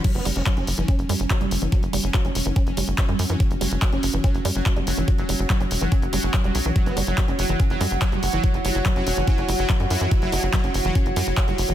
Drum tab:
CC |x---------------|----------------|----------------|----------------|
HH |xxoxxxoxxxoxxxox|xxoxxxoxxxoxxxox|xxoxxxoxxxoxxxox|xxoxxxoxxxoxxxox|
CP |----x-------x---|----x-------x---|----x-------x---|----x-------x---|
BD |o---o---o---o---|o---o---o---o---|o---o---o---o---|o---o---o---o---|

CC |----------------|----------------|----------------|
HH |xxoxxxoxxxoxxxox|xxoxxxoxxxoxxxox|xxoxxxoxxxoxxxox|
CP |----x-------x---|----x-------x---|----x-------x---|
BD |o---o---o---o---|o---o---o---o---|o---o---o---o---|